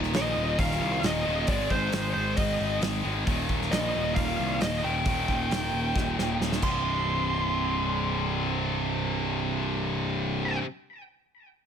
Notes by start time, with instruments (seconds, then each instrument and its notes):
Already playing: picked electric bass D#1, distorted electric guitar D#2 A#2 D#3
0.04 snare
0.12 picked electric bass A#1, snare, open hi-hat
0.17 lead electric guitar D#5
0.36 picked electric bass D#1
0.59 picked electric bass D#1, lead electric guitar F5, kick, open hi-hat
0.71 snare
0.80 picked electric bass C2
1.03 picked electric bass D#1, lead electric guitar D#5, snare, open hi-hat
1.25 picked electric bass D#1, distorted electric guitar D#2 A#2 D#3
1.47 picked electric bass G#1, distorted electric guitar G#2 D#3 G#3, lead electric guitar D5, kick, open hi-hat
1.70 picked electric bass G#1, lead electric guitar C5, kick
1.92 picked electric bass G#1, snare, open hi-hat
2.14 picked electric bass G#1, lead electric guitar C5
2.37 picked electric bass G#1, lead electric guitar D#5, kick, open hi-hat
2.60 picked electric bass G#1
2.81 picked electric bass G#1, snare, open hi-hat
3.03 picked electric bass G#1, distorted electric guitar G#2 D#3 G#3
3.25 picked electric bass D#1, distorted electric guitar D#2 A#2 D#3, kick, open hi-hat
3.49 picked electric bass D#1, kick
3.62 snare
3.72 picked electric bass A#1, lead electric guitar D#5, snare, open hi-hat
3.96 picked electric bass D#1
4.15 picked electric bass D#1, lead electric guitar F5, kick, open hi-hat
4.40 picked electric bass C2
4.61 picked electric bass D#1, lead electric guitar D#5, snare, open hi-hat
4.83 picked electric bass D#1, distorted electric guitar D#2 A#2 D#3, lead electric guitar G5
5.05 picked electric bass D#1, distorted electric guitar D#2 A#2 D#3, kick, open hi-hat
5.28 picked electric bass D#1, kick
5.51 picked electric bass D#1, snare, open hi-hat
5.72 picked electric bass D#1
5.96 picked electric bass D#1, kick, snare
6.18 picked electric bass D#1, snare
6.40 picked electric bass D#1, snare
6.52 snare
6.62 picked electric bass C1, distorted electric guitar C2 G2 C3, lead electric guitar C6, kick, crash